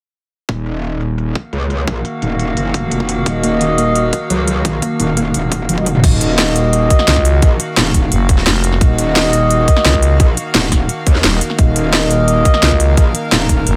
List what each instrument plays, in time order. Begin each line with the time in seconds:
0.49 wobble bass D#1, synth drone D#3 A#3 F#4 F5, kick, closed hi-hat
0.66 closed hi-hat
0.83 closed hi-hat
1.01 closed hi-hat
1.18 closed hi-hat
1.35 kick, closed hi-hat
1.53 wobble bass C#2, closed hi-hat
1.70 closed hi-hat
1.88 wobble bass A#1, kick, closed hi-hat
2.05 closed hi-hat
2.22 wobble bass D#1, closed hi-hat
2.40 closed hi-hat
2.57 wobble bass F#1, closed hi-hat
2.74 kick, closed hi-hat
2.91 wobble bass F1, closed hi-hat
3.00 kick
3.09 closed hi-hat
3.26 wobble bass D#1, synth pluck D#3, brass ensemble A#3 F#4 D#5, kick, closed hi-hat
3.44 synth pluck A#3, closed hi-hat
3.61 synth pluck D#3, closed hi-hat
3.78 synth pluck A#3, closed hi-hat
3.96 closed hi-hat
4.13 kick, closed hi-hat
4.30 wobble bass C#2, synth pluck F#3, closed hi-hat
4.47 synth pluck F#3, closed hi-hat
4.65 wobble bass A#1, synth pluck D#3, kick, closed hi-hat
4.82 synth pluck A#3, kick, closed hi-hat
4.99 wobble bass D#1, synth pluck D#3, closed hi-hat
5.17 synth pluck A#3, closed hi-hat
5.34 wobble bass D#1, closed hi-hat
5.52 kick, closed hi-hat
5.69 wobble bass F1, synth pluck F3, closed hi-hat
5.78 brass ensemble A#3 F#4 D#5, kick, high tom
5.86 synth pluck D#3, closed hi-hat, mid tom
5.95 mid tom
6.04 wobble bass D#1, synth drone D#3 A#3 F#4 F5, brass ensemble A#3 F#4 D#5, kick, closed hi-hat, crash
6.21 closed hi-hat
6.38 snare, closed hi-hat
6.56 closed hi-hat
6.73 closed hi-hat
6.90 kick, closed hi-hat
6.99 snare
7.08 fm bass C#2, snare, closed hi-hat
7.16 kick, snare
7.25 closed hi-hat
7.42 wobble bass A#1, brass ensemble A#3 F#4 D#5, kick, closed hi-hat
7.60 closed hi-hat
7.77 wobble bass D#1, snare, closed hi-hat
7.94 kick, closed hi-hat
8.12 fm bass F#1, closed hi-hat
8.29 kick, closed hi-hat
8.38 snare
8.46 fm bass F1, snare, closed hi-hat
8.64 closed hi-hat
8.73 snare
8.81 wobble bass D#1, brass ensemble A#3 F#4 D#5, kick, closed hi-hat
8.99 closed hi-hat
9.16 snare, closed hi-hat
9.33 closed hi-hat
9.51 closed hi-hat
9.68 kick, closed hi-hat
9.77 snare
9.85 fm bass C#2, snare, closed hi-hat
9.94 kick, snare
10.03 closed hi-hat
10.20 wobble bass A#1, brass ensemble A#3 F#4 D#5, kick, closed hi-hat
10.37 closed hi-hat
10.55 wobble bass D#1, snare, closed hi-hat
10.72 kick, snare, closed hi-hat
10.89 closed hi-hat
11.07 wobble bass D#2, kick, closed hi-hat
11.15 snare
11.24 fm bass D#1, snare, closed hi-hat
11.33 brass ensemble A#3 F#4 D#5
11.41 closed hi-hat
11.50 snare
11.59 wobble bass D#1, brass ensemble A#3 F#4 D#5, synth drone A#4, kick, closed hi-hat
11.76 closed hi-hat
11.93 snare, closed hi-hat
12.11 closed hi-hat
12.28 closed hi-hat
12.45 kick, closed hi-hat
12.54 snare
12.63 fm bass C#2, snare, closed hi-hat
12.71 kick, snare
12.80 closed hi-hat
12.97 wobble bass A#1, brass ensemble A#3 F#4 D#5, kick, closed hi-hat
13.15 closed hi-hat
13.32 wobble bass D#1, snare, closed hi-hat
13.49 kick, closed hi-hat
13.67 fm bass F#1, closed hi-hat